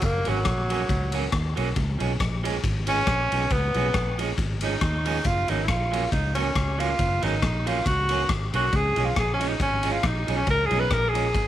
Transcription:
0.01 F#1 A#3, kick, hi-hat pedal, ride
0.25 G#1 F#3 A#3 C#4, ride
0.45 A#1, kick, cross-stick, ride
0.70 F#3 A#3 C#4, ride
0.89 C#2, kick, ride
1.12 F#3 A#3 C#4, ride
1.32 D#2, kick, cross-stick, ride
1.56 B1 F#3 A#3 C#4, ride
1.76 C#2, kick, ride
1.99 B1 F3 G#3 C#4, ride
2.20 A#1, kick, cross-stick, ride
2.44 F3 G#3 C#4, ride
2.64 G#1, kick, ride
2.87 F3 G#3 C#4, ride
3.07 A#1, kick, cross-stick, ride
3.32 B1 F3 G#3 C#4, ride
3.50 C#2 B3, kick, ride
3.74 B1 F3 G#3 C#4, ride
3.94 A#1, kick, cross-stick, ride
4.18 F3 G#3 C#4, ride
4.38 G#1, kick, ride
4.61 F3 G#3 C#4 D#4, ride
4.81 D#2, kick, cross-stick, ride
5.05 F3 G#3 C#4, open hi-hat, ride
5.24 F#1 F4, kick, hi-hat pedal, ride
5.48 G#1 F#3 A#3 C#4 D#4, ride
5.64 E4
5.68 A#1 F4, kick, cross-stick, ride
5.91 F#3 A#3 C#4, ride
6.12 C#2 D#4, kick, ride
6.35 F#3 A#3 C#4, ride
6.55 C#2, kick, cross-stick, ride
6.78 F#3 A#3 C#4 F4, ride
6.99 F#1, kick, ride
7.22 G#1 F#3 A#3 C#4 D#4, ride
7.42 A#1, kick, cross-stick, ride
7.66 F#3 A#3 C#4 F4, ride
7.86 C#2 F#4, kick, ride
8.09 F#3 A#3 C#4, ride
8.29 G#1, kick, cross-stick, ride
8.54 B1 F#3 A#3 C#4 F#4, ride
8.73 C#2 G#4, kick, ride
8.96 B1 F3 G#3 C#4, ride
9.05 F4
9.16 A#1 G#4, kick, cross-stick, ride
9.34 C#4
9.39 F3 G#3 C#4, ride
9.48 D#4
9.60 G#1 C#4, kick, ride
9.83 F3 G#3 C#4, ride
9.92 F4
10.03 A#1 D#4, kick, cross-stick, ride
10.27 B1 F3 G#3 C#4, ride
10.36 C#4
10.47 C#2 A#4, kick, ride
10.65 G#4
10.70 B1 F3 G#3 C#4, ride
10.79 B4
10.91 A#1 A#4, kick, cross-stick, ride
11.08 G#4
11.13 F3 G#3 C#4, ride
11.35 G#1, kick, ride

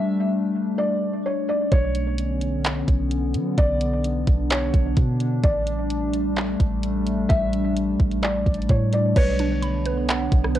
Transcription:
Already playing: G3 A3 D4 E5
0.78 D5
1.26 C#5
1.49 D5
1.72 B1 D3 B3 C#4 C#5, kick, closed hi-hat
1.95 closed hi-hat
2.18 closed hi-hat
2.41 closed hi-hat
2.65 clap, closed hi-hat
2.88 B1, kick, closed hi-hat
3.11 closed hi-hat
3.34 F#3, closed hi-hat
3.58 B1 D4 D5, kick, closed hi-hat
3.81 closed hi-hat
4.04 closed hi-hat
4.27 B1, kick, closed hi-hat
4.50 C#5, clap, closed hi-hat
4.74 B1, kick, closed hi-hat
4.97 B2, kick, closed hi-hat
5.20 closed hi-hat
5.44 A1 G3 A3 D5, kick, closed hi-hat
5.67 closed hi-hat
5.90 closed hi-hat
6.14 closed hi-hat
6.37 clap, closed hi-hat
6.60 A1, kick, closed hi-hat
6.83 closed hi-hat
7.07 closed hi-hat
7.29 A1 E5, kick, closed hi-hat
7.53 closed hi-hat
7.76 closed hi-hat
8.00 A1, kick, closed hi-hat, open hi-hat
8.11 closed hi-hat
8.22 D5, clap, closed hi-hat
8.46 A1, kick, closed hi-hat
8.54 closed hi-hat
8.62 closed hi-hat
8.69 A2 C#5, kick, closed hi-hat
8.92 D5, closed hi-hat
9.16 B1 D3 B3 D4 B4 C#5, kick, closed hi-hat, crash
9.39 D4, closed hi-hat
9.62 B5, closed hi-hat
9.85 B4, closed hi-hat
10.09 F#5, clap, closed hi-hat
10.32 B1, kick, closed hi-hat
10.44 cross-stick
10.55 B4, closed hi-hat

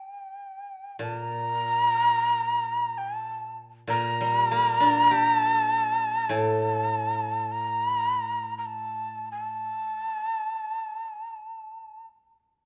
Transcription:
0.00 G5
0.99 A#2 A5
1.13 A#5
2.98 G5
3.16 A5
3.87 A#2 A#5
4.21 G3
4.51 A#3
4.80 D4
5.11 G4
5.27 A5
6.29 A2 A5
7.51 A#5
8.58 A#5
8.66 A5
9.31 A5

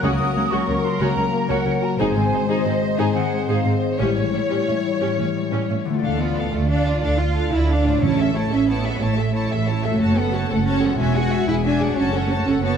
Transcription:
Already playing: F#3 A#3 C#4 F#4 A#4 C#5
0.03 C#2 C#3 C#4 F#4 D#6
0.20 C#2 A#3 C#4
0.36 C#2 A#3 C#4
0.51 C#2 F#3 A#3 C#4 F#4 A#4 C#6
0.67 C#2 A#3 C#4 C#5
0.83 F#4 C6
1.00 C#2 C#3 F#3 A#3 C#4 F#4 A#5
1.16 C#2 A#3 C#4
1.33 A#3
1.49 C#2 F#3 A#3 C#4 F#4 A#4 F#5
1.66 C#2 A#3 C#4 C#5
1.82 F#4 A#5
1.99 G#1 G#2 G#3 C4 D#4 G#4 C5 G#5
2.16 G#2 D#3 C4 D#4
2.33 G#2 G#3 D#4
2.48 G#2 G#3 C4 D#4 G#4 D#5
2.65 G#2 C4 D#4 C5
2.82 G#4
2.98 G#2 G#3 C4 D#4 G#4 G#5
3.15 G#2 D#3 C4 D#4 F#5
3.32 G#3
3.48 G#2 D#4 G#4 C5 F5
3.65 G#2 C4 D#4 C5
3.82 G#4 D#5
3.99 A1 A2 G3 C#4 E4 G4 C#5
4.16 A2 E3 C#4
4.32 A2 G3 C#4 E4
4.49 A2 C#4 E4 G4
4.67 A2 C#4 E5
4.85 E4
5.00 A2 C#4 G4
5.18 A2 E3 C#4
5.36 G3
5.52 A2 C#4 E4 G4
5.69 A2 C#4 E5
5.85 D3 A3 E4
5.90 A3
5.94 F4
5.99 D4 D5
6.03 D2 A4 F5
6.18 B3 F4 D5
6.35 D4 A4 F5
6.52 D2 A3 F4 D5
6.69 D4 A4 F5
6.86 F4 D5
7.03 D2 D4 A4 F5
7.19 F4 D5
7.35 D4 A4 F5
7.52 D2 E4 F4 D5
7.69 D4 A4 F5
7.84 A2 F4 D5
7.89 A3
7.93 E4
7.98 C#5
8.02 A1 A2 C#4 E4 C#5 A5
8.18 A4 E5
8.35 A3 E4 C#5 A5
8.51 A1 C#4 A4 E5
8.67 B3 E4 C#5 A5
8.84 A4 E5
9.00 A1 A3 E4 C#5 A5
9.16 A4 E5
9.33 E4 C#5 A5
9.49 A1 A4 E5
9.67 E4 C#5 A5
9.81 F#2 A3 A4 E5
9.86 A3
9.90 F#4
9.95 C#5
10.00 F#1 F#4 C#5 A5
10.16 B3 A4 F#5
10.32 F#4 C#5 A5
10.49 F#1 A3 A4 F#5
10.65 C#4 F#4 C#5 A5
10.81 E2 A4 F#5
10.85 G#3
10.90 F#4
10.94 E5 G#5
10.99 E1 C#4 F#4 E5
11.15 F#4 G#4 F#5 G#5
11.32 F#4 E5 G#5
11.48 E1 E4 G#4 F#5 G#5
11.64 D4 F#4 E5 G#5
11.79 F#2 G#4 F#5 G#5
11.83 A3
11.88 F#4
11.93 C#4 F#4 C#5
11.97 F#1 C#5 A5
12.13 A4 F#5
12.30 A3 F#4 C#5 A5
12.46 F#1 C#4 A4 F#5
12.62 B3 F#4 C#5 A5

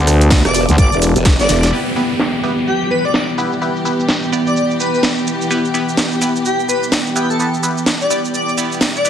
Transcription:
Already playing: D2 E3 B3 G4 A4 E5
0.07 cross-stick, open hi-hat, shaker
0.21 closed hi-hat, shaker
0.31 kick, snare, closed hi-hat, shaker
0.45 E1 D5, cross-stick, closed hi-hat, shaker
0.55 open hi-hat, shaker
0.69 D2, closed hi-hat, shaker
0.78 G1 D5, kick, closed hi-hat, shaker
0.92 E1, closed hi-hat, shaker
1.02 open hi-hat, shaker
1.16 E1, closed hi-hat, shaker
1.25 kick, snare, closed hi-hat, shaker
1.39 G1 D5, snare, closed hi-hat, shaker
1.49 E1, snare, open hi-hat, shaker
1.63 snare, closed hi-hat, shaker
1.73 E3 B3 E4 G4 B4, downlifter, shaker
1.96 B3 E4 G4 B4 G5, shaker
2.11 shaker
2.20 snare, shaker
2.34 shaker
2.44 B3 E4 G4 B4, shaker
2.58 shaker
2.67 G4, shaker
2.82 shaker
2.91 B4, shaker
3.05 D5, shaker
3.14 D5, snare, shaker
3.29 shaker
3.38 B3 E4 G4 B4, shaker
3.52 shaker
3.62 B3 E4 G4 B4, shaker
3.76 shaker
3.85 B3 E4 G4 B4, shaker
4.00 shaker
4.09 snare, shaker
4.24 shaker
4.32 B3 E4 G4 D5, shaker
4.47 D5, shaker
4.56 D5, shaker
4.71 shaker
4.80 B4, shaker
4.94 B4, shaker
5.03 snare, shaker
5.18 shaker
5.27 shaker
5.42 shaker
5.51 B3 E4 G4 B4, shaker
5.65 shaker
5.74 B3 E4 G4 B4, shaker
5.89 shaker
5.97 snare, shaker
6.12 shaker
6.21 B3 E4 G4 B4, shaker
6.36 shaker
6.45 G4, shaker
6.60 shaker
6.69 B4, shaker
6.83 shaker
6.92 snare, shaker
7.07 shaker
7.16 B3 E4 G4 B4, shaker
7.30 A4, shaker
7.39 B3 E4 G4 A4 B4, shaker
7.54 shaker
7.63 B3 E4 G4 B4, shaker
7.78 shaker
7.86 snare, shaker
8.01 D5, shaker
8.10 B3 E4 G4 D5, shaker
8.25 shaker
8.34 D5, shaker
8.49 shaker
8.58 B3 E4 G4 D5, shaker
8.72 shaker
8.81 snare, shaker
8.96 D5, shaker
9.05 B3 E4 G4 B4, shaker

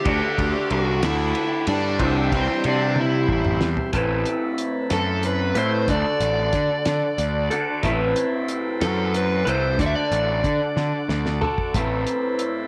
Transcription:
Already playing: G4 A4
0.04 D2 D3 A3 D4 F#5 D6, kick, ride
0.09 F#4
0.38 D2, kick, ride
0.70 C2 F#4, ride
1.03 D2 E4, snare, ride
1.35 ride
1.67 G2 D4, ride
1.98 C2 C3 E3 G3 C4 G4 E5 C6, kick, ride
2.03 G4
2.32 C2 C4, kick, ride
2.64 C3 D4, ride
2.96 high tom
3.00 E4
3.29 A1, kick
3.45 mid tom
3.61 E2, snare
3.77 floor tom
3.93 A1 A2 A3 C4 E4 A4 B4 B5, kick, closed hi-hat
4.26 closed hi-hat
4.58 closed hi-hat
4.90 F#2 A4, snare, closed hi-hat
5.23 B4, closed hi-hat
5.55 A2 A3 C4 E4 B4 C5, closed hi-hat
5.87 D2 D3 D4 F#4 D5 F#5 D6, kick, closed hi-hat
5.91 A4
6.20 A1, closed hi-hat
6.53 D3, kick, closed hi-hat
6.85 D3, snare, closed hi-hat
7.18 D2, closed hi-hat
7.50 D3 D4 F#4 A4, closed hi-hat
7.82 A1 A2 A3 C4 E4 B4 B5, kick, closed hi-hat
8.16 closed hi-hat
8.48 closed hi-hat
8.81 F#2 A4, snare, closed hi-hat
9.14 B4, closed hi-hat
9.45 C2 A2 A3 C4 E4 B4, closed hi-hat
9.49 C5
9.78 D2 D3 D4 F#4 A4 D5 F#5 D6, kick, closed hi-hat
9.86 E5
9.95 D5
10.11 A1, closed hi-hat
10.44 D3, kick, closed hi-hat
10.77 D3, snare
11.09 D2, snare
11.26 snare
11.41 D3 D4 F#4 A4, floor tom
11.58 kick
11.74 A1 A2 A3 C4 E4 B4 B5, kick, closed hi-hat
12.07 closed hi-hat
12.39 closed hi-hat

